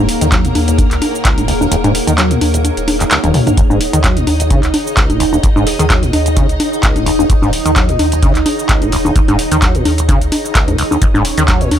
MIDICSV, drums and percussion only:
0, 0, Header, 1, 2, 480
1, 0, Start_track
1, 0, Key_signature, -6, "minor"
1, 0, Tempo, 465116
1, 1770, Time_signature, 4, 2, 24, 8
1, 12167, End_track
2, 0, Start_track
2, 0, Title_t, "Drums"
2, 89, Note_on_c, 9, 46, 105
2, 192, Note_off_c, 9, 46, 0
2, 221, Note_on_c, 9, 42, 55
2, 228, Note_on_c, 9, 69, 73
2, 324, Note_off_c, 9, 42, 0
2, 329, Note_on_c, 9, 36, 115
2, 330, Note_on_c, 9, 42, 78
2, 330, Note_on_c, 9, 63, 38
2, 332, Note_off_c, 9, 69, 0
2, 332, Note_on_c, 9, 39, 116
2, 338, Note_on_c, 9, 69, 58
2, 432, Note_off_c, 9, 36, 0
2, 434, Note_off_c, 9, 42, 0
2, 434, Note_off_c, 9, 63, 0
2, 435, Note_off_c, 9, 39, 0
2, 441, Note_off_c, 9, 69, 0
2, 461, Note_on_c, 9, 42, 39
2, 468, Note_on_c, 9, 69, 36
2, 564, Note_off_c, 9, 42, 0
2, 570, Note_on_c, 9, 46, 87
2, 570, Note_on_c, 9, 63, 59
2, 572, Note_off_c, 9, 69, 0
2, 673, Note_off_c, 9, 46, 0
2, 673, Note_off_c, 9, 63, 0
2, 701, Note_on_c, 9, 42, 55
2, 708, Note_on_c, 9, 69, 73
2, 804, Note_off_c, 9, 42, 0
2, 809, Note_on_c, 9, 36, 116
2, 810, Note_on_c, 9, 42, 81
2, 810, Note_on_c, 9, 63, 39
2, 812, Note_off_c, 9, 69, 0
2, 818, Note_on_c, 9, 69, 59
2, 912, Note_off_c, 9, 36, 0
2, 913, Note_off_c, 9, 42, 0
2, 913, Note_off_c, 9, 63, 0
2, 921, Note_off_c, 9, 69, 0
2, 941, Note_on_c, 9, 42, 40
2, 943, Note_on_c, 9, 39, 37
2, 949, Note_on_c, 9, 69, 35
2, 1044, Note_off_c, 9, 42, 0
2, 1046, Note_off_c, 9, 39, 0
2, 1050, Note_on_c, 9, 46, 96
2, 1050, Note_on_c, 9, 63, 57
2, 1052, Note_off_c, 9, 69, 0
2, 1153, Note_off_c, 9, 46, 0
2, 1153, Note_off_c, 9, 63, 0
2, 1188, Note_on_c, 9, 69, 70
2, 1289, Note_on_c, 9, 36, 115
2, 1290, Note_on_c, 9, 42, 84
2, 1292, Note_off_c, 9, 69, 0
2, 1292, Note_on_c, 9, 39, 117
2, 1298, Note_on_c, 9, 69, 60
2, 1392, Note_off_c, 9, 36, 0
2, 1393, Note_off_c, 9, 42, 0
2, 1395, Note_off_c, 9, 39, 0
2, 1401, Note_off_c, 9, 69, 0
2, 1422, Note_on_c, 9, 42, 40
2, 1422, Note_on_c, 9, 63, 39
2, 1429, Note_on_c, 9, 69, 37
2, 1525, Note_off_c, 9, 42, 0
2, 1525, Note_off_c, 9, 63, 0
2, 1530, Note_on_c, 9, 46, 92
2, 1533, Note_off_c, 9, 69, 0
2, 1633, Note_off_c, 9, 46, 0
2, 1661, Note_on_c, 9, 63, 56
2, 1669, Note_on_c, 9, 69, 70
2, 1765, Note_off_c, 9, 63, 0
2, 1771, Note_on_c, 9, 42, 88
2, 1772, Note_off_c, 9, 69, 0
2, 1778, Note_on_c, 9, 69, 60
2, 1874, Note_off_c, 9, 42, 0
2, 1882, Note_off_c, 9, 69, 0
2, 1902, Note_on_c, 9, 42, 39
2, 1902, Note_on_c, 9, 63, 58
2, 1910, Note_on_c, 9, 69, 35
2, 2005, Note_off_c, 9, 42, 0
2, 2005, Note_off_c, 9, 63, 0
2, 2010, Note_on_c, 9, 46, 104
2, 2013, Note_off_c, 9, 69, 0
2, 2114, Note_off_c, 9, 46, 0
2, 2141, Note_on_c, 9, 42, 56
2, 2149, Note_on_c, 9, 69, 72
2, 2244, Note_off_c, 9, 42, 0
2, 2251, Note_on_c, 9, 42, 82
2, 2251, Note_on_c, 9, 63, 38
2, 2252, Note_off_c, 9, 69, 0
2, 2253, Note_on_c, 9, 39, 119
2, 2259, Note_on_c, 9, 69, 59
2, 2354, Note_off_c, 9, 42, 0
2, 2354, Note_off_c, 9, 63, 0
2, 2356, Note_off_c, 9, 39, 0
2, 2362, Note_off_c, 9, 69, 0
2, 2382, Note_on_c, 9, 42, 40
2, 2390, Note_on_c, 9, 69, 35
2, 2485, Note_off_c, 9, 42, 0
2, 2491, Note_on_c, 9, 46, 91
2, 2491, Note_on_c, 9, 63, 59
2, 2493, Note_off_c, 9, 69, 0
2, 2594, Note_off_c, 9, 46, 0
2, 2594, Note_off_c, 9, 63, 0
2, 2622, Note_on_c, 9, 42, 55
2, 2629, Note_on_c, 9, 69, 71
2, 2725, Note_off_c, 9, 42, 0
2, 2731, Note_on_c, 9, 42, 84
2, 2731, Note_on_c, 9, 63, 38
2, 2733, Note_off_c, 9, 69, 0
2, 2739, Note_on_c, 9, 69, 60
2, 2834, Note_off_c, 9, 42, 0
2, 2834, Note_off_c, 9, 63, 0
2, 2842, Note_off_c, 9, 69, 0
2, 2861, Note_on_c, 9, 42, 40
2, 2869, Note_on_c, 9, 69, 36
2, 2965, Note_off_c, 9, 42, 0
2, 2970, Note_on_c, 9, 46, 102
2, 2970, Note_on_c, 9, 63, 57
2, 2972, Note_off_c, 9, 69, 0
2, 3073, Note_off_c, 9, 46, 0
2, 3073, Note_off_c, 9, 63, 0
2, 3100, Note_on_c, 9, 42, 38
2, 3102, Note_on_c, 9, 39, 37
2, 3108, Note_on_c, 9, 69, 70
2, 3204, Note_off_c, 9, 42, 0
2, 3205, Note_off_c, 9, 39, 0
2, 3209, Note_on_c, 9, 42, 85
2, 3211, Note_off_c, 9, 69, 0
2, 3211, Note_on_c, 9, 39, 122
2, 3217, Note_on_c, 9, 69, 59
2, 3312, Note_off_c, 9, 42, 0
2, 3314, Note_off_c, 9, 39, 0
2, 3320, Note_off_c, 9, 69, 0
2, 3340, Note_on_c, 9, 42, 40
2, 3340, Note_on_c, 9, 48, 52
2, 3340, Note_on_c, 9, 63, 37
2, 3348, Note_on_c, 9, 69, 35
2, 3443, Note_off_c, 9, 42, 0
2, 3443, Note_off_c, 9, 48, 0
2, 3443, Note_off_c, 9, 63, 0
2, 3449, Note_on_c, 9, 46, 95
2, 3449, Note_on_c, 9, 47, 81
2, 3451, Note_off_c, 9, 69, 0
2, 3552, Note_off_c, 9, 46, 0
2, 3552, Note_off_c, 9, 47, 0
2, 3580, Note_on_c, 9, 42, 38
2, 3580, Note_on_c, 9, 45, 77
2, 3580, Note_on_c, 9, 63, 54
2, 3588, Note_on_c, 9, 69, 69
2, 3684, Note_off_c, 9, 42, 0
2, 3684, Note_off_c, 9, 45, 0
2, 3684, Note_off_c, 9, 63, 0
2, 3688, Note_on_c, 9, 36, 119
2, 3689, Note_on_c, 9, 42, 84
2, 3691, Note_off_c, 9, 69, 0
2, 3697, Note_on_c, 9, 69, 57
2, 3791, Note_off_c, 9, 36, 0
2, 3792, Note_off_c, 9, 42, 0
2, 3800, Note_off_c, 9, 69, 0
2, 3820, Note_on_c, 9, 63, 56
2, 3827, Note_on_c, 9, 69, 33
2, 3923, Note_off_c, 9, 63, 0
2, 3928, Note_on_c, 9, 46, 105
2, 3931, Note_off_c, 9, 69, 0
2, 4032, Note_off_c, 9, 46, 0
2, 4060, Note_on_c, 9, 42, 57
2, 4068, Note_on_c, 9, 69, 69
2, 4163, Note_off_c, 9, 42, 0
2, 4168, Note_on_c, 9, 36, 114
2, 4169, Note_on_c, 9, 42, 82
2, 4169, Note_on_c, 9, 63, 37
2, 4170, Note_on_c, 9, 39, 120
2, 4171, Note_off_c, 9, 69, 0
2, 4176, Note_on_c, 9, 69, 54
2, 4271, Note_off_c, 9, 36, 0
2, 4272, Note_off_c, 9, 42, 0
2, 4272, Note_off_c, 9, 63, 0
2, 4274, Note_off_c, 9, 39, 0
2, 4280, Note_off_c, 9, 69, 0
2, 4300, Note_on_c, 9, 42, 41
2, 4308, Note_on_c, 9, 69, 36
2, 4403, Note_off_c, 9, 42, 0
2, 4408, Note_on_c, 9, 46, 92
2, 4408, Note_on_c, 9, 63, 60
2, 4411, Note_off_c, 9, 69, 0
2, 4511, Note_off_c, 9, 46, 0
2, 4511, Note_off_c, 9, 63, 0
2, 4540, Note_on_c, 9, 42, 58
2, 4548, Note_on_c, 9, 69, 70
2, 4643, Note_off_c, 9, 42, 0
2, 4649, Note_on_c, 9, 36, 118
2, 4649, Note_on_c, 9, 42, 83
2, 4649, Note_on_c, 9, 63, 38
2, 4651, Note_off_c, 9, 69, 0
2, 4657, Note_on_c, 9, 69, 57
2, 4752, Note_off_c, 9, 36, 0
2, 4752, Note_off_c, 9, 42, 0
2, 4752, Note_off_c, 9, 63, 0
2, 4760, Note_off_c, 9, 69, 0
2, 4780, Note_on_c, 9, 42, 38
2, 4782, Note_on_c, 9, 39, 39
2, 4788, Note_on_c, 9, 69, 33
2, 4883, Note_off_c, 9, 42, 0
2, 4885, Note_off_c, 9, 39, 0
2, 4890, Note_on_c, 9, 46, 104
2, 4890, Note_on_c, 9, 63, 58
2, 4891, Note_off_c, 9, 69, 0
2, 4993, Note_off_c, 9, 46, 0
2, 4993, Note_off_c, 9, 63, 0
2, 5028, Note_on_c, 9, 69, 68
2, 5129, Note_on_c, 9, 36, 121
2, 5129, Note_on_c, 9, 42, 84
2, 5130, Note_on_c, 9, 39, 127
2, 5131, Note_off_c, 9, 69, 0
2, 5136, Note_on_c, 9, 69, 59
2, 5232, Note_off_c, 9, 36, 0
2, 5232, Note_off_c, 9, 42, 0
2, 5234, Note_off_c, 9, 39, 0
2, 5240, Note_off_c, 9, 69, 0
2, 5261, Note_on_c, 9, 42, 39
2, 5261, Note_on_c, 9, 63, 37
2, 5268, Note_on_c, 9, 69, 34
2, 5364, Note_off_c, 9, 42, 0
2, 5364, Note_off_c, 9, 63, 0
2, 5368, Note_on_c, 9, 46, 96
2, 5371, Note_off_c, 9, 69, 0
2, 5471, Note_off_c, 9, 46, 0
2, 5499, Note_on_c, 9, 63, 55
2, 5507, Note_on_c, 9, 69, 66
2, 5602, Note_off_c, 9, 63, 0
2, 5609, Note_on_c, 9, 36, 123
2, 5609, Note_on_c, 9, 42, 84
2, 5610, Note_off_c, 9, 69, 0
2, 5616, Note_on_c, 9, 69, 58
2, 5712, Note_off_c, 9, 36, 0
2, 5712, Note_off_c, 9, 42, 0
2, 5720, Note_off_c, 9, 69, 0
2, 5740, Note_on_c, 9, 63, 59
2, 5747, Note_on_c, 9, 69, 32
2, 5843, Note_off_c, 9, 63, 0
2, 5849, Note_on_c, 9, 46, 114
2, 5851, Note_off_c, 9, 69, 0
2, 5952, Note_off_c, 9, 46, 0
2, 5980, Note_on_c, 9, 42, 55
2, 5988, Note_on_c, 9, 69, 69
2, 6084, Note_off_c, 9, 42, 0
2, 6089, Note_on_c, 9, 36, 123
2, 6090, Note_on_c, 9, 42, 81
2, 6090, Note_on_c, 9, 63, 39
2, 6091, Note_off_c, 9, 69, 0
2, 6091, Note_on_c, 9, 39, 126
2, 6097, Note_on_c, 9, 69, 53
2, 6192, Note_off_c, 9, 36, 0
2, 6193, Note_off_c, 9, 42, 0
2, 6193, Note_off_c, 9, 63, 0
2, 6195, Note_off_c, 9, 39, 0
2, 6201, Note_off_c, 9, 69, 0
2, 6220, Note_on_c, 9, 42, 39
2, 6228, Note_on_c, 9, 69, 35
2, 6324, Note_off_c, 9, 42, 0
2, 6329, Note_on_c, 9, 46, 97
2, 6329, Note_on_c, 9, 63, 61
2, 6331, Note_off_c, 9, 69, 0
2, 6433, Note_off_c, 9, 46, 0
2, 6433, Note_off_c, 9, 63, 0
2, 6460, Note_on_c, 9, 42, 53
2, 6468, Note_on_c, 9, 69, 67
2, 6563, Note_off_c, 9, 42, 0
2, 6569, Note_on_c, 9, 36, 122
2, 6569, Note_on_c, 9, 42, 78
2, 6569, Note_on_c, 9, 63, 39
2, 6571, Note_off_c, 9, 69, 0
2, 6577, Note_on_c, 9, 69, 53
2, 6673, Note_off_c, 9, 36, 0
2, 6673, Note_off_c, 9, 42, 0
2, 6673, Note_off_c, 9, 63, 0
2, 6680, Note_off_c, 9, 69, 0
2, 6701, Note_on_c, 9, 42, 39
2, 6709, Note_on_c, 9, 69, 33
2, 6804, Note_off_c, 9, 42, 0
2, 6810, Note_on_c, 9, 46, 107
2, 6810, Note_on_c, 9, 63, 59
2, 6812, Note_off_c, 9, 69, 0
2, 6914, Note_off_c, 9, 46, 0
2, 6914, Note_off_c, 9, 63, 0
2, 6949, Note_on_c, 9, 69, 63
2, 7050, Note_on_c, 9, 36, 126
2, 7050, Note_on_c, 9, 42, 81
2, 7052, Note_off_c, 9, 69, 0
2, 7052, Note_on_c, 9, 39, 127
2, 7058, Note_on_c, 9, 69, 57
2, 7153, Note_off_c, 9, 36, 0
2, 7153, Note_off_c, 9, 42, 0
2, 7155, Note_off_c, 9, 39, 0
2, 7161, Note_off_c, 9, 69, 0
2, 7182, Note_on_c, 9, 42, 36
2, 7182, Note_on_c, 9, 63, 40
2, 7189, Note_on_c, 9, 69, 34
2, 7285, Note_off_c, 9, 42, 0
2, 7285, Note_off_c, 9, 63, 0
2, 7290, Note_on_c, 9, 46, 101
2, 7293, Note_off_c, 9, 69, 0
2, 7394, Note_off_c, 9, 46, 0
2, 7421, Note_on_c, 9, 63, 58
2, 7429, Note_on_c, 9, 69, 64
2, 7524, Note_off_c, 9, 63, 0
2, 7529, Note_on_c, 9, 36, 127
2, 7530, Note_on_c, 9, 42, 83
2, 7532, Note_off_c, 9, 69, 0
2, 7538, Note_on_c, 9, 69, 54
2, 7633, Note_off_c, 9, 36, 0
2, 7633, Note_off_c, 9, 42, 0
2, 7641, Note_off_c, 9, 69, 0
2, 7661, Note_on_c, 9, 63, 61
2, 7669, Note_on_c, 9, 69, 32
2, 7764, Note_off_c, 9, 63, 0
2, 7770, Note_on_c, 9, 46, 113
2, 7772, Note_off_c, 9, 69, 0
2, 7873, Note_off_c, 9, 46, 0
2, 7901, Note_on_c, 9, 42, 54
2, 7909, Note_on_c, 9, 69, 68
2, 8004, Note_off_c, 9, 42, 0
2, 8009, Note_on_c, 9, 36, 125
2, 8010, Note_on_c, 9, 42, 77
2, 8010, Note_on_c, 9, 63, 42
2, 8012, Note_off_c, 9, 69, 0
2, 8012, Note_on_c, 9, 39, 126
2, 8018, Note_on_c, 9, 69, 54
2, 8112, Note_off_c, 9, 36, 0
2, 8113, Note_off_c, 9, 42, 0
2, 8113, Note_off_c, 9, 63, 0
2, 8115, Note_off_c, 9, 39, 0
2, 8121, Note_off_c, 9, 69, 0
2, 8141, Note_on_c, 9, 42, 37
2, 8148, Note_on_c, 9, 69, 33
2, 8244, Note_off_c, 9, 42, 0
2, 8249, Note_on_c, 9, 46, 98
2, 8249, Note_on_c, 9, 63, 63
2, 8251, Note_off_c, 9, 69, 0
2, 8352, Note_off_c, 9, 46, 0
2, 8352, Note_off_c, 9, 63, 0
2, 8380, Note_on_c, 9, 42, 53
2, 8388, Note_on_c, 9, 69, 66
2, 8483, Note_off_c, 9, 42, 0
2, 8489, Note_on_c, 9, 36, 126
2, 8489, Note_on_c, 9, 42, 76
2, 8489, Note_on_c, 9, 63, 40
2, 8491, Note_off_c, 9, 69, 0
2, 8496, Note_on_c, 9, 69, 51
2, 8592, Note_off_c, 9, 42, 0
2, 8592, Note_off_c, 9, 63, 0
2, 8593, Note_off_c, 9, 36, 0
2, 8600, Note_off_c, 9, 69, 0
2, 8620, Note_on_c, 9, 42, 37
2, 8621, Note_on_c, 9, 39, 38
2, 8627, Note_on_c, 9, 69, 31
2, 8723, Note_off_c, 9, 42, 0
2, 8725, Note_off_c, 9, 39, 0
2, 8729, Note_on_c, 9, 46, 113
2, 8729, Note_on_c, 9, 63, 58
2, 8731, Note_off_c, 9, 69, 0
2, 8832, Note_off_c, 9, 46, 0
2, 8832, Note_off_c, 9, 63, 0
2, 8867, Note_on_c, 9, 69, 63
2, 8969, Note_on_c, 9, 36, 126
2, 8969, Note_on_c, 9, 42, 76
2, 8970, Note_off_c, 9, 69, 0
2, 8971, Note_on_c, 9, 39, 121
2, 8977, Note_on_c, 9, 69, 55
2, 9072, Note_off_c, 9, 42, 0
2, 9073, Note_off_c, 9, 36, 0
2, 9074, Note_off_c, 9, 39, 0
2, 9080, Note_off_c, 9, 69, 0
2, 9100, Note_on_c, 9, 42, 36
2, 9100, Note_on_c, 9, 63, 41
2, 9108, Note_on_c, 9, 69, 31
2, 9203, Note_off_c, 9, 42, 0
2, 9203, Note_off_c, 9, 63, 0
2, 9209, Note_on_c, 9, 46, 99
2, 9211, Note_off_c, 9, 69, 0
2, 9312, Note_off_c, 9, 46, 0
2, 9340, Note_on_c, 9, 63, 58
2, 9347, Note_on_c, 9, 69, 63
2, 9443, Note_off_c, 9, 63, 0
2, 9449, Note_on_c, 9, 36, 127
2, 9449, Note_on_c, 9, 42, 76
2, 9451, Note_off_c, 9, 69, 0
2, 9457, Note_on_c, 9, 69, 57
2, 9552, Note_off_c, 9, 36, 0
2, 9552, Note_off_c, 9, 42, 0
2, 9560, Note_off_c, 9, 69, 0
2, 9580, Note_on_c, 9, 42, 35
2, 9580, Note_on_c, 9, 63, 61
2, 9588, Note_on_c, 9, 69, 33
2, 9683, Note_off_c, 9, 42, 0
2, 9683, Note_off_c, 9, 63, 0
2, 9689, Note_on_c, 9, 46, 107
2, 9691, Note_off_c, 9, 69, 0
2, 9792, Note_off_c, 9, 46, 0
2, 9820, Note_on_c, 9, 42, 52
2, 9827, Note_on_c, 9, 69, 67
2, 9923, Note_off_c, 9, 42, 0
2, 9929, Note_on_c, 9, 36, 124
2, 9929, Note_on_c, 9, 42, 77
2, 9929, Note_on_c, 9, 63, 41
2, 9931, Note_off_c, 9, 69, 0
2, 9931, Note_on_c, 9, 39, 117
2, 9937, Note_on_c, 9, 69, 54
2, 10032, Note_off_c, 9, 36, 0
2, 10032, Note_off_c, 9, 42, 0
2, 10032, Note_off_c, 9, 63, 0
2, 10034, Note_off_c, 9, 39, 0
2, 10040, Note_off_c, 9, 69, 0
2, 10060, Note_on_c, 9, 42, 36
2, 10068, Note_on_c, 9, 69, 34
2, 10163, Note_off_c, 9, 42, 0
2, 10169, Note_on_c, 9, 46, 97
2, 10169, Note_on_c, 9, 63, 62
2, 10171, Note_off_c, 9, 69, 0
2, 10273, Note_off_c, 9, 46, 0
2, 10273, Note_off_c, 9, 63, 0
2, 10301, Note_on_c, 9, 42, 52
2, 10309, Note_on_c, 9, 69, 67
2, 10405, Note_off_c, 9, 42, 0
2, 10409, Note_on_c, 9, 36, 121
2, 10410, Note_on_c, 9, 42, 78
2, 10410, Note_on_c, 9, 63, 43
2, 10412, Note_off_c, 9, 69, 0
2, 10418, Note_on_c, 9, 69, 53
2, 10512, Note_off_c, 9, 36, 0
2, 10513, Note_off_c, 9, 42, 0
2, 10513, Note_off_c, 9, 63, 0
2, 10521, Note_off_c, 9, 69, 0
2, 10541, Note_on_c, 9, 42, 36
2, 10549, Note_on_c, 9, 69, 32
2, 10645, Note_off_c, 9, 42, 0
2, 10650, Note_on_c, 9, 46, 109
2, 10650, Note_on_c, 9, 63, 59
2, 10652, Note_off_c, 9, 69, 0
2, 10754, Note_off_c, 9, 46, 0
2, 10754, Note_off_c, 9, 63, 0
2, 10788, Note_on_c, 9, 69, 66
2, 10889, Note_on_c, 9, 36, 127
2, 10890, Note_on_c, 9, 42, 75
2, 10891, Note_off_c, 9, 69, 0
2, 10891, Note_on_c, 9, 39, 117
2, 10897, Note_on_c, 9, 69, 55
2, 10992, Note_off_c, 9, 36, 0
2, 10993, Note_off_c, 9, 42, 0
2, 10995, Note_off_c, 9, 39, 0
2, 11001, Note_off_c, 9, 69, 0
2, 11021, Note_on_c, 9, 42, 34
2, 11021, Note_on_c, 9, 63, 41
2, 11029, Note_on_c, 9, 69, 32
2, 11124, Note_off_c, 9, 42, 0
2, 11124, Note_off_c, 9, 63, 0
2, 11130, Note_on_c, 9, 46, 103
2, 11132, Note_off_c, 9, 69, 0
2, 11233, Note_off_c, 9, 46, 0
2, 11261, Note_on_c, 9, 63, 62
2, 11269, Note_on_c, 9, 69, 63
2, 11364, Note_off_c, 9, 63, 0
2, 11369, Note_on_c, 9, 36, 120
2, 11369, Note_on_c, 9, 42, 81
2, 11372, Note_off_c, 9, 69, 0
2, 11376, Note_on_c, 9, 69, 60
2, 11472, Note_off_c, 9, 36, 0
2, 11472, Note_off_c, 9, 42, 0
2, 11480, Note_off_c, 9, 69, 0
2, 11501, Note_on_c, 9, 63, 63
2, 11508, Note_on_c, 9, 69, 33
2, 11604, Note_off_c, 9, 63, 0
2, 11608, Note_on_c, 9, 46, 109
2, 11612, Note_off_c, 9, 69, 0
2, 11711, Note_off_c, 9, 46, 0
2, 11740, Note_on_c, 9, 42, 52
2, 11748, Note_on_c, 9, 69, 71
2, 11843, Note_off_c, 9, 42, 0
2, 11849, Note_on_c, 9, 36, 119
2, 11849, Note_on_c, 9, 42, 77
2, 11849, Note_on_c, 9, 63, 41
2, 11851, Note_off_c, 9, 69, 0
2, 11851, Note_on_c, 9, 39, 113
2, 11857, Note_on_c, 9, 69, 56
2, 11952, Note_off_c, 9, 36, 0
2, 11952, Note_off_c, 9, 42, 0
2, 11952, Note_off_c, 9, 63, 0
2, 11954, Note_off_c, 9, 39, 0
2, 11960, Note_off_c, 9, 69, 0
2, 11980, Note_on_c, 9, 42, 35
2, 11988, Note_on_c, 9, 69, 36
2, 12083, Note_off_c, 9, 42, 0
2, 12089, Note_on_c, 9, 46, 93
2, 12089, Note_on_c, 9, 63, 64
2, 12091, Note_off_c, 9, 69, 0
2, 12167, Note_off_c, 9, 46, 0
2, 12167, Note_off_c, 9, 63, 0
2, 12167, End_track
0, 0, End_of_file